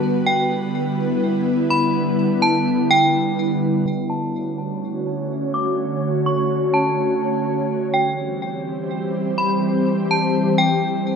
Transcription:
0.00 3.82 D3 medium
0.00 3.82 G3 medium
0.00 3.82 B3 medium
0.00 3.82 E4 medium
0.00 3.82 B4 medium
0.26 0.49 G5 medium
1.70 1.93 B5 medium
2.42 2.87 A5 medium
2.91 3.35 G5 loud
3.86 7.66 D3 medium
3.86 7.66 A3 medium
3.86 7.66 C#4 medium
3.86 7.66 F#4 medium
3.86 7.66 C#5 medium
4.10 4.33 A5 medium
5.54 5.77 D6 medium
6.26 6.71 C#6 medium
6.74 7.66 A5 medium
7.70 11.16 E3 medium
7.70 11.16 G3 medium
7.70 11.16 C4 medium
7.70 11.16 G4 medium
7.70 11.16 C5 medium
7.94 8.17 G5 medium
9.38 9.61 B5 medium
10.11 10.56 A5 medium
10.58 11.03 G5 medium

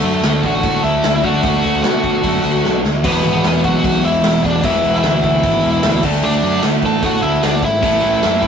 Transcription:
0.00 0.21 F#2 medium
0.00 1.21 D3 medium
0.00 0.40 A3 medium
0.00 1.22 A3 loud
0.00 1.23 D4 loud
0.00 0.45 A4 loud
0.04 crash medium
0.23 0.41 D2 loud
0.23 snare loud
0.23 crash medium
0.43 0.61 A1 medium
0.43 0.82 F#4 medium
0.43 0.82 F#5 loud
0.43 kick medium
0.43 crash medium
0.63 0.82 A2 loud
0.63 kick loud
0.63 crash medium
0.83 1.02 D2 medium
0.83 1.21 E4 medium
0.83 1.25 E5 loud
0.83 crash medium
1.04 1.22 D2 medium
1.04 snare loud
1.04 crash medium
1.22 1.41 D2 medium
1.22 2.82 D3 medium
1.22 2.82 A3 medium
1.22 2.83 D4 loud
1.22 1.43 F#4 medium
1.22 1.44 F#5 medium
1.22 kick medium
1.22 crash medium
1.43 1.62 D2 medium
1.43 1.82 F#4 medium
1.43 1.82 F#5 loud
1.43 kick loud
1.43 crash loud
1.64 1.82 D2 medium
1.64 crash medium
1.83 2.19 B2 medium
1.83 2.79 F#4 medium
1.83 2.79 F#5 medium
1.83 snare loud
1.83 crash medium
2.04 kick loud
2.04 crash medium
2.23 2.42 F#2 medium
2.23 kick loud
2.23 crash medium
2.43 2.61 D2 medium
2.43 crash medium
2.64 2.82 B1 medium
2.64 snare medium
2.84 3.02 D2 loud
2.84 snare medium
3.03 3.22 E1 medium
3.03 4.62 E2 loud
3.03 4.63 B2 loud
3.03 4.63 E3 medium
3.03 3.60 B3 medium
3.03 3.60 B4 medium
3.03 kick loud
3.03 splash loud
3.03 crash loud
3.24 3.42 G#1 medium
3.24 crash medium
3.44 3.62 E1 loud
3.44 snare loud
3.44 crash medium
3.64 3.82 B1 medium
3.64 4.01 F#4 medium
3.64 4.05 F#5 medium
3.64 kick loud
3.64 crash medium
3.84 4.02 B1 medium
3.84 kick loud
3.84 crash medium
4.03 4.21 E1 medium
4.03 4.41 E4 medium
4.03 4.41 E5 loud
4.03 crash medium
4.22 4.41 E1 loud
4.22 snare loud
4.22 crash loud
4.44 4.62 E1 medium
4.44 4.63 D4 medium
4.44 4.63 D5 medium
4.44 kick medium
4.44 crash medium
4.63 4.81 E1 medium
4.63 6.02 E2 loud
4.63 6.03 B2 loud
4.63 6.03 E3 loud
4.63 5.01 E4 medium
4.63 5.05 E5 loud
4.63 kick loud
4.63 crash loud
4.83 5.01 E1 medium
4.83 crash medium
5.03 5.40 D2 loud
5.03 6.01 E4 medium
5.03 6.01 E5 loud
5.03 snare loud
5.03 crash medium
5.23 kick loud
5.23 crash medium
5.43 5.61 G#1 loud
5.43 kick loud
5.43 crash medium
5.63 5.82 E1 medium
5.63 crash medium
5.83 6.01 D2 loud
5.83 snare loud
5.83 crash loud
6.03 6.21 D2 medium
6.03 7.62 D3 loud
6.03 7.63 A3 loud
6.03 7.63 D4 loud
6.03 kick loud
6.03 crash loud
6.23 6.42 D2 medium
6.23 6.61 D4 medium
6.23 6.62 D5 loud
6.23 crash loud
6.42 6.61 F#2 loud
6.42 crash medium
6.62 6.81 D2 medium
6.62 snare loud
6.62 crash loud
6.82 7.01 A1 medium
6.82 7.03 A4 medium
6.82 7.05 A5 loud
6.82 kick medium
6.82 crash medium
7.03 7.21 A2 medium
7.03 7.22 F#4 medium
7.03 7.22 F#5 loud
7.03 kick loud
7.03 crash loud
7.22 7.41 D2 medium
7.22 7.41 E4 medium
7.22 7.43 E5 loud
7.22 crash medium
7.43 7.61 D2 medium
7.43 7.62 D4 medium
7.43 7.63 D5 loud
7.43 snare loud
7.43 crash loud
7.62 7.83 G#1 medium
7.62 8.47 E4 medium
7.62 8.47 E5 loud
7.62 kick medium
7.62 crash medium
7.81 8.01 A1 medium
7.81 8.47 A2 loud
7.81 8.47 E3 loud
7.81 8.47 A3 loud
7.81 kick loud
7.81 crash loud
8.03 8.22 A1 medium
8.03 crash medium
8.23 8.47 F#2 loud
8.23 snare loud
8.23 crash medium
8.42 kick medium
8.42 crash medium

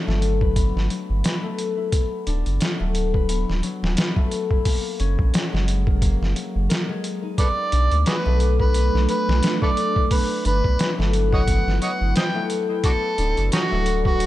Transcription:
0.00 0.89 F#3 loud
0.00 0.56 B3 medium
0.00 2.26 D4 loud
0.00 1.66 E4 medium
0.00 0.41 B4 medium
0.07 0.72 G1 medium
0.07 1.43 A3 loud
0.07 snare soft
0.22 closed hi-hat medium
0.41 1.24 B4 medium
0.41 kick medium
0.56 1.92 B3 medium
0.56 kick loud
0.56 closed hi-hat medium
0.76 0.89 G1 medium
0.76 snare soft
0.90 1.98 F#3 medium
0.90 closed hi-hat medium
1.10 1.23 G1 medium
1.24 3.14 B4 medium
1.24 snare loud
1.24 closed hi-hat medium
1.43 2.79 A3 medium
1.58 closed hi-hat medium
1.77 4.39 E4 medium
1.92 3.29 B3 medium
1.92 kick loud
1.92 closed hi-hat medium
2.27 2.44 D1 medium
2.27 5.06 D4 loud
2.27 closed hi-hat medium
2.46 2.59 F#1 medium
2.46 closed hi-hat soft
2.61 3.62 F#3 medium
2.61 snare loud
2.61 closed hi-hat medium
2.80 3.45 D1 medium
2.80 4.16 A3 medium
2.95 closed hi-hat medium
3.14 3.97 B4 medium
3.14 kick medium
3.29 4.71 B3 medium
3.29 closed hi-hat medium
3.49 3.62 D1 medium
3.49 snare soft
3.63 4.70 F#3 medium
3.63 closed hi-hat medium
3.83 3.96 D1 loud
3.83 snare soft
3.97 4.71 B4 medium
3.97 snare loud
3.97 closed hi-hat medium
4.16 4.71 A3 medium
4.16 kick medium
4.31 closed hi-hat medium
4.51 7.12 E4 medium
4.51 kick medium
4.65 6.01 A#3 medium
4.65 kick loud
4.65 open hi-hat medium
5.00 5.17 F#1 medium
5.00 7.78 C#4 loud
5.00 closed hi-hat medium
5.19 5.32 A#1 medium
5.19 kick medium
5.33 6.34 F#3 medium
5.33 snare loud
5.33 closed hi-hat medium
5.53 6.18 F#1 medium
5.53 6.88 G#3 loud
5.53 snare soft
5.68 closed hi-hat medium
5.87 6.69 A#4 medium
5.87 kick medium
6.01 7.44 A#3 medium
6.01 kick loud
6.01 closed hi-hat medium
6.21 6.34 F#1 medium
6.21 snare soft
6.35 7.43 F#3 medium
6.35 closed hi-hat medium
6.56 6.68 F#1 loud
6.69 7.44 A#4 medium
6.69 snare loud
6.69 closed hi-hat medium
6.89 7.43 G#3 loud
7.04 closed hi-hat medium
7.23 7.78 D#4 medium
7.38 10.08 A3 medium
7.38 8.74 B3 medium
7.38 10.08 D4 medium
7.38 7.47 A4 medium
7.38 12.80 B4 medium
7.38 7.48 B4 medium
7.38 8.01 D5 medium
7.38 kick loud
7.38 closed hi-hat medium
7.72 7.89 B1 medium
7.72 10.45 D4 loud
7.72 closed hi-hat medium
7.91 8.05 D2 medium
7.91 closed hi-hat soft
8.06 9.08 F#3 medium
8.06 8.14 F#4 medium
8.06 8.15 G#4 medium
8.06 8.54 B4 medium
8.06 snare loud
8.06 closed hi-hat medium
8.25 8.90 B1 medium
8.25 9.62 A3 loud
8.40 closed hi-hat medium
8.59 9.42 B4 medium
8.59 9.05 B4 medium
8.59 kick medium
8.74 10.10 B3 medium
8.74 closed hi-hat medium
8.94 9.07 B1 medium
8.94 snare soft
9.09 10.16 F#3 medium
9.09 9.57 B4 medium
9.09 closed hi-hat medium
9.28 9.41 B1 medium
9.28 snare medium
9.43 11.32 B4 medium
9.43 snare loud
9.43 closed hi-hat medium
9.62 10.98 A3 loud
9.62 9.70 A4 medium
9.62 9.70 B4 medium
9.62 10.07 D5 medium
9.62 kick medium
9.77 closed hi-hat medium
9.96 12.57 E4 medium
9.96 kick medium
10.11 11.47 B3 medium
10.11 12.81 E4 medium
10.11 10.43 B4 medium
10.11 kick loud
10.11 open hi-hat medium
10.45 10.62 G1 loud
10.45 13.18 D4 medium
10.45 10.93 B4 medium
10.45 closed hi-hat medium
10.64 10.77 B1 medium
10.64 kick medium
10.79 11.80 F#3 medium
10.79 snare loud
10.79 closed hi-hat medium
10.98 11.63 G1 medium
10.98 12.34 A3 loud
10.98 snare soft
11.13 closed hi-hat medium
11.32 12.15 B4 medium
11.32 11.42 C#5 medium
11.32 11.40 D#5 medium
11.32 11.77 F#5 medium
11.32 kick medium
11.47 12.84 B3 medium
11.47 kick loud
11.47 closed hi-hat medium
11.67 11.80 G1 medium
11.67 snare soft
11.81 12.89 F#3 medium
11.81 11.91 C#5 medium
11.81 11.91 D#5 medium
11.81 12.13 F#5 medium
11.81 closed hi-hat medium
12.01 12.14 G1 medium
12.15 14.04 B4 medium
12.15 12.25 C5 medium
12.15 12.23 D#5 medium
12.15 12.47 G5 medium
12.15 snare loud
12.15 closed hi-hat medium
12.35 13.71 A3 loud
12.50 closed hi-hat medium
12.69 14.26 E4 medium
12.84 14.19 B3 medium
12.84 12.91 D4 medium
12.84 14.26 F#4 medium
12.84 12.92 F#4 medium
12.84 13.46 A4 medium
12.84 14.26 D5 medium
12.84 kick loud
12.84 closed hi-hat medium
13.18 13.35 D1 medium
13.18 14.26 D4 loud
13.18 closed hi-hat medium
13.37 13.50 F#1 medium
13.37 closed hi-hat soft
13.52 14.26 F#3 loud
13.52 13.60 C#4 medium
13.52 13.60 D#4 medium
13.52 14.00 F#4 loud
13.52 snare loud
13.52 closed hi-hat medium
13.71 14.26 D1 medium
13.71 14.26 A3 loud
13.86 closed hi-hat medium
14.05 14.26 F#4 medium
14.05 14.26 B4 medium
14.05 kick medium
14.20 14.26 B3 medium
14.20 closed hi-hat medium

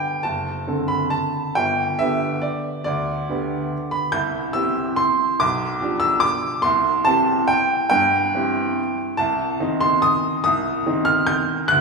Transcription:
0.00 0.21 D3 soft
0.00 0.21 B3 soft
0.00 0.21 G4 soft
0.00 0.24 G5 loud
0.23 0.66 F#1 medium
0.23 0.89 A5 loud
0.67 1.53 D3 soft
0.67 1.53 C4 soft
0.67 1.53 A4 medium
0.88 1.11 B5 loud
1.10 1.56 A5 loud
1.55 1.99 G1 medium
1.55 1.99 G5 loud
1.99 2.82 D3 soft
1.99 2.83 B3 soft
1.99 2.83 G4 medium
1.99 2.43 E5 loud
2.42 2.83 D5 medium
2.84 3.28 D2 medium
2.84 3.93 D5 loud
3.29 4.11 D3 medium
3.29 4.11 B3 medium
3.29 4.11 G4 medium
3.91 4.13 B5 loud
4.12 4.54 C2 medium
4.12 4.55 G6 loud
4.53 5.37 E3 medium
4.53 5.37 C4 medium
4.53 5.38 G4 medium
4.53 4.98 E6 loud
4.96 5.40 C6 loud
5.40 5.81 B1 medium
5.40 6.02 D6 loud
5.81 6.61 F3 medium
5.81 6.61 D4 medium
5.81 6.61 G4 medium
6.00 6.22 E6 loud
6.20 6.64 D6 loud
6.62 7.05 C2 medium
6.62 7.06 C6 loud
7.05 7.88 E3 medium
7.05 7.89 C4 medium
7.05 7.89 G4 medium
7.05 7.50 A5 loud
7.48 7.88 G5 loud
7.90 8.33 G2 medium
7.90 8.97 G5 loud
8.35 9.15 E3 medium
8.35 9.15 C4 medium
8.35 9.15 G4 medium
9.17 9.59 C2 medium
9.17 9.81 A5 loud
9.60 10.41 D#3 medium
9.60 10.41 C4 medium
9.60 10.41 D#4 medium
9.80 10.03 C6 loud
10.02 10.42 D#6 loud
10.44 10.85 C2 medium
10.44 11.07 D#6 loud
10.86 11.67 D#3 medium
10.86 11.66 C4 medium
10.86 11.67 D#4 medium
11.05 11.27 F6 loud
11.27 11.70 G6 loud
11.68 11.81 D2 medium
11.68 11.81 F#6 loud

